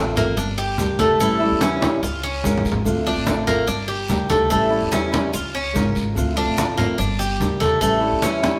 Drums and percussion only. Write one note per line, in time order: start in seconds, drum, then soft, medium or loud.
0.16 low conga medium
0.16 short guiro medium
0.16 maracas soft
0.37 high conga soft
0.37 long guiro medium
0.37 maracas medium
0.57 high conga soft
0.78 high conga medium
0.78 short guiro medium
0.78 maracas medium
0.99 high conga medium
0.99 short guiro medium
0.99 maracas soft
1.19 high conga soft
1.19 long guiro medium
1.19 maracas medium
1.41 high conga soft
1.61 high conga medium
1.61 short guiro medium
1.61 maracas medium
1.82 high conga loud
1.82 short guiro medium
1.82 maracas soft
2.02 high conga soft
2.02 long guiro medium
2.02 maracas medium
2.24 high conga soft
2.44 high conga medium
2.44 short guiro medium
2.44 maracas medium
2.58 low conga medium
2.65 short guiro medium
2.65 maracas soft
2.72 low conga medium
2.85 high conga soft
2.85 long guiro medium
2.85 maracas medium
3.06 high conga soft
3.26 high conga medium
3.26 short guiro medium
3.26 maracas medium
3.47 low conga medium
3.47 short guiro medium
3.47 maracas soft
3.67 high conga soft
3.67 long guiro medium
3.67 maracas medium
3.90 high conga soft
4.09 high conga medium
4.09 short guiro medium
4.09 maracas medium
4.29 high conga medium
4.29 short guiro medium
4.29 maracas soft
4.50 high conga soft
4.50 long guiro medium
4.50 maracas medium
4.72 high conga soft
4.91 high conga medium
4.91 short guiro medium
4.91 maracas medium
5.12 high conga medium
5.12 short guiro medium
5.12 maracas soft
5.33 high conga soft
5.33 long guiro medium
5.33 maracas medium
5.55 high conga soft
5.75 high conga medium
5.75 short guiro medium
5.75 maracas medium
5.95 short guiro medium
5.95 maracas soft
6.16 high conga soft
6.16 long guiro medium
6.16 maracas medium
6.38 high conga soft
6.57 high conga loud
6.57 short guiro medium
6.57 maracas medium
6.78 low conga medium
6.78 short guiro medium
6.78 maracas soft
6.98 high conga soft
6.98 long guiro medium
6.98 maracas medium
7.20 high conga soft
7.20 maracas medium
7.40 high conga medium
7.40 short guiro medium
7.40 maracas medium
7.61 high conga medium
7.61 short guiro medium
7.61 maracas soft
7.81 high conga soft
7.81 long guiro medium
7.81 maracas medium
8.03 high conga soft
8.22 high conga medium
8.22 short guiro medium
8.22 maracas medium
8.43 high conga medium
8.43 short guiro medium
8.43 maracas soft